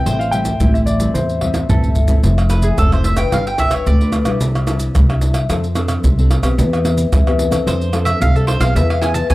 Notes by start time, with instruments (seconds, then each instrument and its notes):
Already playing: nylon-string guitar G3 C4 E4, mandolin B4, grand piano G5
0.06 upright bass A1, nylon-string guitar A2, mandolin C5, pandeiro, maracas, surdo
0.19 grand piano F5, pandeiro, maracas
0.31 nylon-string guitar G3 C4 E4, grand piano G5, pandeiro, maracas
0.45 pandeiro, maracas, surdo
0.60 upright bass A1, nylon-string guitar E3 G3 C4 E4, pandeiro, maracas, surdo
0.74 grand piano E5, pandeiro, maracas
0.86 grand piano D5, pandeiro, maracas
0.99 nylon-string guitar G3 C4 E4, pandeiro, maracas, surdo
1.14 upright bass E2, nylon-string guitar A2, grand piano C5, pandeiro, maracas, surdo
1.29 pandeiro, maracas
1.41 nylon-string guitar G3 C4 E4, pandeiro, tamborim, surdo
1.54 pandeiro, tamborim, maracas, surdo
1.69 upright bass A1, nylon-string guitar E3 G3 C4 E4, mandolin A4, surdo, pandeiro, maracas
1.84 pandeiro, maracas, surdo
1.95 upright bass G1, pandeiro, maracas, surdo
2.08 nylon-string guitar A3 C4 E4, pandeiro, maracas, surdo
2.23 upright bass F1, nylon-string guitar F3, pandeiro, maracas, surdo
2.38 pandeiro, tamborim, maracas
2.50 nylon-string guitar A3 C4 E4, mandolin B4, pandeiro, tamborim, maracas
2.62 mandolin G#4, pandeiro, maracas
2.78 upright bass F1, nylon-string guitar C3, mandolin A4, pandeiro, tamborim, maracas, surdo
2.92 nylon-string guitar A3 C4 E4, mandolin C5, pandeiro, tamborim, maracas
3.04 mandolin E5, pandeiro, maracas
3.17 nylon-string guitar D4 F4 B4, mandolin G5, pandeiro, tamborim, maracas
3.32 upright bass G1, nylon-string guitar G3, mandolin F5, pandeiro, tamborim, maracas, surdo
3.47 mandolin G5, pandeiro, maracas
3.58 nylon-string guitar D4 F4 B4, mandolin E5, pandeiro, tamborim, maracas, surdo
3.71 mandolin C#5, pandeiro, tamborim, maracas
3.87 upright bass D2, nylon-string guitar D3, mandolin D5, pandeiro, maracas, surdo
4.01 nylon-string guitar D4 F4 B4, pandeiro, maracas
4.12 pandeiro, tamborim, maracas
4.25 upright bass B1, nylon-string guitar G3 D4 E4, pandeiro, tamborim, maracas
4.41 upright bass C2, nylon-string guitar C3, pandeiro, maracas, surdo
4.55 pandeiro, tamborim, maracas
4.67 nylon-string guitar G3 D4 E4, pandeiro, tamborim, maracas
4.79 pandeiro, maracas
4.95 upright bass C2, nylon-string guitar G3, pandeiro, tamborim, maracas, surdo
5.10 nylon-string guitar G3 D4 E4, pandeiro, tamborim, maracas
5.21 pandeiro, maracas
5.34 pandeiro, tamborim, maracas
5.50 upright bass F2, nylon-string guitar F3 C4 D4 A4, pandeiro, tamborim, maracas, surdo
5.64 pandeiro, maracas
5.75 nylon-string guitar C4 D4 A4, pandeiro, tamborim, maracas
5.88 pandeiro, tamborim, maracas
6.04 upright bass C2, nylon-string guitar C3, pandeiro, maracas, surdo
6.18 nylon-string guitar C4 D4 A4, pandeiro, maracas
6.31 pandeiro, tamborim, maracas
6.43 upright bass B1, nylon-string guitar B3 C4 G4, pandeiro, tamborim, maracas
6.58 upright bass E2, nylon-string guitar E3, pandeiro, maracas, surdo
6.73 pandeiro, tamborim, maracas
6.84 nylon-string guitar B3 C4 G4, pandeiro, tamborim, maracas
6.98 pandeiro, maracas
7.12 upright bass E2, nylon-string guitar E3, pandeiro, tamborim, maracas, surdo
7.26 nylon-string guitar B3 C4 G4, pandeiro, tamborim, maracas
7.39 pandeiro, maracas
7.50 nylon-string guitar C4 D4 A4, pandeiro, tamborim, maracas
7.66 upright bass F2, nylon-string guitar F3, mandolin C5, pandeiro, tamborim, maracas, surdo
7.81 pandeiro, maracas
7.92 nylon-string guitar C4 D4 A4, pandeiro, tamborim, maracas
8.05 mandolin E5, pandeiro, tamborim, maracas
8.21 upright bass C2, nylon-string guitar C3, mandolin F5, pandeiro, maracas, surdo
8.35 nylon-string guitar C4 D4 A4, mandolin A4, pandeiro, maracas
8.47 mandolin C5, pandeiro, tamborim
8.60 upright bass B1, nylon-string guitar B3 E4 G#4, mandolin F5, pandeiro, tamborim, maracas
8.75 upright bass E2, nylon-string guitar E3, mandolin E5, pandeiro, maracas, surdo
8.90 mandolin F5, pandeiro, tamborim, maracas
9.01 nylon-string guitar B3 E4 G#4, mandolin G#5, pandeiro, tamborim, maracas
9.14 mandolin A5, pandeiro, maracas
9.30 upright bass E2, nylon-string guitar B2, mandolin G#5, pandeiro, tamborim, maracas, surdo